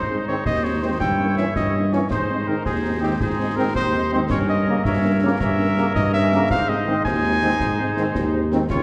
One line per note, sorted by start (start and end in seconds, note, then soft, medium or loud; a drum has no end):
0.00 0.37 G#2 medium
0.00 0.42 D#4 medium
0.00 0.25 C5 medium
0.00 0.44 C5 medium
0.10 0.16 G#3 medium
0.10 0.16 C4 soft
0.10 0.16 D#4 soft
0.27 0.34 D#3 medium
0.27 0.35 G#3 medium
0.27 0.34 C4 medium
0.27 0.35 C4 soft
0.27 0.35 D#4 soft
0.27 0.45 C#5 medium
0.45 0.92 D#2 medium
0.45 0.97 D#4 medium
0.45 0.97 C5 medium
0.45 0.65 D#5 medium
0.45 concert bass drum medium
0.45 snare medium
0.64 0.71 G#3 medium
0.64 0.71 C4 medium
0.64 0.71 D#4 soft
0.64 0.84 C#5 medium
0.81 0.88 D#3 medium
0.81 0.90 G#3 medium
0.81 0.88 C4 medium
0.81 0.90 C4 medium
0.81 0.90 D#4 medium
0.81 0.99 C5 medium
1.00 1.42 G2 medium
1.00 1.94 E4 medium
1.00 1.94 C#5 medium
1.00 1.34 G5 loud
1.00 concert bass drum medium
1.00 snare medium
1.20 1.27 A#3 medium
1.20 1.27 C#4 medium
1.20 1.27 E4 medium
1.37 1.44 E3 medium
1.37 1.45 A#3 medium
1.37 1.44 C#4 medium
1.37 1.45 C#4 soft
1.37 1.45 E4 medium
1.37 1.55 E5 medium
1.37 snare medium
1.56 2.02 G2 medium
1.56 1.95 D#5 medium
1.56 concert bass drum medium
1.56 snare medium
1.75 1.81 A#3 soft
1.75 1.81 C#4 medium
1.75 1.81 E4 soft
1.91 1.98 E3 medium
1.91 1.99 A#3 medium
1.91 1.98 C#4 medium
1.91 2.00 C#4 medium
1.91 2.00 E4 medium
1.91 2.10 C#5 medium
1.91 snare medium
2.11 2.56 G#2 medium
2.11 2.62 D#4 medium
2.11 2.62 C5 medium
2.11 2.49 C5 medium
2.11 concert bass drum medium
2.11 snare medium
2.30 2.36 G#3 medium
2.30 2.36 C4 medium
2.30 2.36 D#4 medium
2.46 2.53 D#3 medium
2.46 2.55 G#3 soft
2.46 2.53 C4 medium
2.46 2.54 C4 soft
2.46 2.54 D#4 medium
2.46 2.65 A#4 medium
2.65 3.11 D#2 medium
2.65 3.17 D#4 medium
2.65 3.00 G#4 medium
2.65 3.17 C5 medium
2.65 concert bass drum medium
2.65 snare medium
2.84 2.91 G#3 medium
2.84 2.91 C4 medium
2.84 2.91 D#4 medium
3.01 3.08 D#3 medium
3.01 3.09 G#3 medium
3.01 3.08 C4 medium
3.01 3.09 C4 medium
3.01 3.09 D#4 medium
3.01 3.22 G4 medium
3.20 3.66 G#2 medium
3.20 3.72 D#4 medium
3.20 3.58 G#4 medium
3.20 3.72 C5 medium
3.20 concert bass drum medium
3.20 snare medium
3.39 3.45 G#3 medium
3.39 3.45 C4 medium
3.39 3.45 D#4 medium
3.56 3.63 D#3 medium
3.56 3.64 G#3 medium
3.56 3.63 C4 medium
3.56 3.64 C4 medium
3.56 3.64 D#4 medium
3.56 3.75 A#4 medium
3.75 4.21 D#2 medium
3.75 4.27 D#4 medium
3.75 4.10 C5 loud
3.75 4.27 C5 medium
3.75 concert bass drum medium
3.75 snare medium
3.93 4.00 G#3 medium
3.93 4.00 C4 medium
3.93 4.00 D#4 medium
4.12 4.19 D#3 medium
4.12 4.18 G#3 medium
4.12 4.18 C4 medium
4.12 4.19 D#4 medium
4.12 4.21 C5 medium
4.30 4.76 G2 medium
4.30 4.82 C#4 medium
4.30 4.84 A#4 medium
4.30 4.39 C#5 loud
4.30 concert bass drum medium
4.30 snare medium
4.30 crash soft
4.48 4.55 A#3 medium
4.48 4.55 C#4 medium
4.48 4.86 D#5 medium
4.67 4.74 C#3 medium
4.67 4.74 A#3 medium
4.67 4.74 C#4 medium
4.84 5.31 G2 medium
4.84 5.37 C#4 medium
4.84 5.37 A#4 medium
4.84 5.21 E5 loud
4.84 concert bass drum medium
4.84 snare medium
5.04 5.10 A#3 medium
5.04 5.10 C#4 medium
5.22 5.29 C#3 medium
5.22 5.28 A#3 medium
5.22 5.29 A#3 medium
5.22 5.29 C#4 medium
5.40 5.86 G2 medium
5.40 6.46 C#4 medium
5.40 6.46 A#4 medium
5.40 5.91 E5 loud
5.40 concert bass drum medium
5.40 snare medium
5.59 5.65 A#3 medium
5.59 5.66 C#4 medium
5.77 5.83 C#3 medium
5.77 5.83 A#3 medium
5.77 5.84 A#3 medium
5.77 5.84 C#4 medium
5.77 snare medium
5.95 6.41 G2 medium
5.95 6.12 D#5 loud
5.95 concert bass drum medium
5.95 snare medium
6.14 6.20 A#3 medium
6.14 6.20 C#4 medium
6.14 6.48 E5 loud
6.32 6.40 C#3 medium
6.32 6.39 A#3 medium
6.32 6.39 C#4 medium
6.32 snare medium
6.50 6.96 G#2 medium
6.50 7.04 D#4 medium
6.50 7.04 C5 medium
6.50 6.70 F5 loud
6.50 concert bass drum medium
6.50 snare medium
6.68 6.75 G#3 medium
6.68 6.75 C4 medium
6.68 6.75 D#4 medium
6.68 7.04 D#5 medium
6.87 6.94 D#3 medium
6.87 6.94 G#3 medium
6.87 6.93 C4 medium
6.87 6.94 C4 medium
6.87 6.93 D#4 medium
7.05 7.46 D#2 medium
7.05 8.53 D#4 medium
7.05 8.53 C5 medium
7.05 8.47 G#5 loud
7.05 concert bass drum medium
7.05 snare medium
7.23 7.30 G#3 medium
7.23 7.30 C4 medium
7.23 7.30 D#4 medium
7.41 7.48 D#3 medium
7.41 7.48 G#3 medium
7.41 7.48 C4 medium
7.41 7.48 D#4 medium
7.59 8.05 G#2 medium
7.59 concert bass drum medium
7.59 snare medium
7.78 7.85 G#3 medium
7.78 7.85 C4 medium
7.78 7.85 D#4 medium
7.96 8.03 D#3 medium
7.96 8.04 G#3 medium
7.96 8.03 C4 medium
7.96 8.04 D#4 medium
7.96 snare medium
8.15 8.61 D#2 medium
8.15 concert bass drum medium
8.15 snare medium
8.33 8.40 G#3 medium
8.33 8.40 C4 medium
8.33 8.40 D#4 medium
8.51 8.57 D#3 medium
8.51 8.58 G#3 medium
8.51 8.57 C4 medium
8.51 8.58 C4 medium
8.51 8.58 D#4 medium
8.51 snare medium
8.70 8.83 C#2 medium
8.70 8.83 F4 medium
8.70 8.83 C#5 loud
8.70 8.83 C#5 medium
8.70 concert bass drum medium
8.70 snare medium
8.70 crash soft